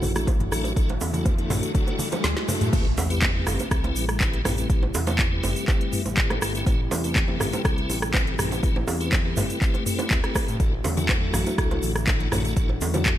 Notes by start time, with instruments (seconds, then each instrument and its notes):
Already playing: analog synth pad D3 F#3 A3 E4 F#4, tonewheel organ A3 D4 E4 F#4 A4, riser
0.02 analog synth bass A1, mid tom, open hi-hat, low bongo, high conga, low conga, shaker
0.15 tonewheel organ A3 D4 E4 F#4 A4, cross-stick, closed hi-hat, muted conga, shaker
0.27 kick, closed hi-hat, low bongo, shaker
0.40 closed hi-hat, mid tom, muted conga, high conga, low conga
0.52 analog synth bass A1, tonewheel organ A3 D4 E4 F#4 A4, cross-stick, open hi-hat, high conga, shaker
0.64 closed hi-hat, low bongo, muted conga, shaker
0.76 analog synth bass A1, tonewheel organ A3 D4 E4 F#4 A4, kick, closed hi-hat, shaker
0.89 closed hi-hat, low bongo
1.01 analog synth bass E2, open hi-hat, high bongo, muted conga, shaker
1.13 tonewheel organ A3 D4 E4 F#4 A4, closed hi-hat, high conga, low conga, shaker
1.25 kick, closed hi-hat, low bongo, muted conga, shaker
1.38 tonewheel organ A3 D4 E4 F#4 A4, closed hi-hat
1.50 analog synth bass A1, mid tom, open hi-hat, high bongo, low bongo, muted conga, high conga, shaker
1.63 closed hi-hat, shaker
1.75 tonewheel organ A3 D4 E4 F#4 A4, kick, closed hi-hat, low conga, shaker
1.87 closed hi-hat, low bongo, muted conga
1.99 open hi-hat, high conga, low conga, shaker
2.12 tonewheel organ A3 D4 E4 F#4 A4, closed hi-hat, low bongo, muted conga, high conga, shaker
2.24 analog synth bass D2, snare, closed hi-hat, shaker
2.37 snare, closed hi-hat, muted conga
2.48 tonewheel organ A3 D4 E4 F#4 A4, mid tom, open hi-hat, low bongo, low conga, shaker
2.61 analog synth bass A2, closed hi-hat, mid tom, muted conga, shaker
2.73 analog synth bass A1, analog synth pad C3 G3 A3 E4 G4, tonewheel organ A3 C4 E4 G4 B4, kick, closed hi-hat, crash, impact, shaker
2.97 analog synth bass E2, open hi-hat, high bongo, low bongo, shaker
3.10 tonewheel organ A3 C4 E4 G4 B4, closed hi-hat, shaker
3.22 kick, clap, closed hi-hat, low bongo, shaker
3.34 tonewheel organ A3 C4 E4 G4 B4
3.47 analog synth bass G1, cross-stick, mid tom, open hi-hat, high bongo, shaker
3.59 closed hi-hat, low bongo, shaker
3.71 analog synth bass C2, tonewheel organ A3 C4 E4 G4 B4, kick, cross-stick, closed hi-hat, shaker
3.84 closed hi-hat, low bongo
3.96 analog synth bass A1, open hi-hat, shaker
4.09 cross-stick, closed hi-hat, shaker
4.20 tonewheel organ A3 C4 E4 G4 B4, kick, clap, closed hi-hat, low bongo, shaker
4.33 closed hi-hat
4.45 analog synth bass A1, tonewheel organ A3 C4 E4 G4 B4, cross-stick, mid tom, open hi-hat, low bongo, shaker
4.57 tonewheel organ A3 C4 E4 G4 B4, closed hi-hat, shaker
4.70 analog synth bass A1, tonewheel organ A3 C4 E4 G4 B4, kick, closed hi-hat, shaker
4.83 low bongo
4.94 analog synth bass E2, open hi-hat, high bongo, shaker
5.07 tonewheel organ A3 C4 E4 G4 B4, closed hi-hat, low bongo, shaker
5.19 kick, clap, closed hi-hat, shaker
5.31 tonewheel organ A3 C4 E4 G4 B4
5.43 analog synth bass G1, mid tom, open hi-hat, high bongo, low bongo, shaker
5.56 closed hi-hat, shaker
5.68 tonewheel organ A3 C4 E4 G4 B4, kick, clap, closed hi-hat, low bongo, shaker
5.81 closed hi-hat
5.93 mid tom, open hi-hat, shaker
6.06 analog synth bass A1, closed hi-hat, low bongo, shaker
6.17 tonewheel organ A3 C4 E4 G4 B4, kick, clap, closed hi-hat, shaker
6.30 cross-stick, closed hi-hat, low bongo
6.42 analog synth bass G1, tonewheel organ A3 C4 E4 G4 B4, cross-stick, open hi-hat, shaker
6.55 tonewheel organ A3 C4 E4 G4 B4, closed hi-hat, shaker
6.66 analog synth bass A1, tonewheel organ A3 C4 E4 G4 B4, kick, closed hi-hat, low bongo, shaker
6.91 analog synth bass E2, open hi-hat, high bongo, low bongo, shaker
7.04 tonewheel organ A3 C4 E4 G4 B4, closed hi-hat, shaker
7.15 kick, clap, closed hi-hat, shaker
7.28 tonewheel organ A3 C4 E4 G4 B4, low bongo
7.40 analog synth bass G1, cross-stick, mid tom, open hi-hat, high bongo, shaker
7.53 closed hi-hat, low bongo, shaker
7.65 analog synth bass C2, tonewheel organ A3 C4 E4 G4 B4, kick, cross-stick, closed hi-hat, shaker
7.78 closed hi-hat
7.89 analog synth bass A1, open hi-hat, low bongo, shaker
8.02 cross-stick, closed hi-hat, shaker
8.14 tonewheel organ A3 C4 E4 G4 B4, kick, clap, closed hi-hat, low bongo, shaker
8.27 closed hi-hat
8.39 analog synth bass A1, tonewheel organ A3 C4 E4 G4 B4, cross-stick, mid tom, open hi-hat, shaker
8.51 tonewheel organ A3 C4 E4 G4 B4, closed hi-hat, low bongo, shaker
8.63 analog synth bass A1, tonewheel organ A3 C4 E4 G4 B4, kick, closed hi-hat, shaker
8.76 low bongo
8.88 analog synth bass E2, open hi-hat, high bongo, shaker
9.00 tonewheel organ A3 C4 E4 G4 B4, closed hi-hat, shaker
9.12 kick, clap, closed hi-hat, low bongo, shaker
9.25 tonewheel organ A3 C4 E4 G4 B4
9.37 analog synth bass G1, mid tom, open hi-hat, high bongo, low bongo, shaker
9.50 closed hi-hat, shaker
9.62 tonewheel organ A3 C4 E4 G4 B4, kick, clap, closed hi-hat, shaker
9.74 closed hi-hat, low bongo
9.86 tonewheel organ A3 C4 E4 G4 B4, mid tom, open hi-hat, shaker
9.99 closed hi-hat, low bongo, shaker
10.11 analog synth bass D2, kick, clap, closed hi-hat, shaker
10.24 tonewheel organ A3 C4 E4 G4 B4, cross-stick, closed hi-hat
10.35 kick, cross-stick, open hi-hat, low bongo, shaker
10.48 analog synth bass A2, closed hi-hat, shaker
10.60 analog synth bass A1, analog synth pad D3 F#3 E4 F#4, tonewheel organ A3 D4 E4 F#4 A4, kick, closed hi-hat, shaker
10.84 analog synth bass E2, open hi-hat, high bongo, low bongo, muted conga, low conga, shaker
10.97 tonewheel organ A3 D4 E4 F#4 A4, closed hi-hat, high conga, low conga, shaker
11.09 kick, clap, closed hi-hat, low bongo, muted conga, shaker
11.22 tonewheel organ A3 D4 E4 F#4 A4
11.33 analog synth bass A1, cross-stick, mid tom, open hi-hat, high bongo, muted conga, high conga, shaker
11.47 closed hi-hat, low bongo, shaker
11.58 analog synth bass C2, tonewheel organ A3 D4 E4 F#4 A4, kick, cross-stick, closed hi-hat, shaker
11.71 closed hi-hat, low bongo, muted conga
11.82 analog synth bass A1, open hi-hat, high conga, shaker
11.96 cross-stick, closed hi-hat, muted conga, shaker
12.07 tonewheel organ A3 D4 E4 F#4 A4, kick, clap, closed hi-hat, low bongo, shaker
12.20 closed hi-hat, muted conga, high conga
12.32 analog synth bass A1, tonewheel organ A3 D4 E4 F#4 A4, cross-stick, mid tom, open hi-hat, low bongo, high conga, shaker
12.44 tonewheel organ A3 D4 E4 F#4 A4, closed hi-hat, muted conga, shaker
12.56 analog synth bass A1, tonewheel organ A3 D4 E4 F#4 A4, kick, closed hi-hat, shaker
12.69 low bongo
12.81 analog synth bass E2, open hi-hat, high bongo, muted conga, shaker
12.94 tonewheel organ A3 D4 E4 F#4 A4, closed hi-hat, low bongo, high conga, low conga, shaker
13.05 kick, clap, closed hi-hat, shaker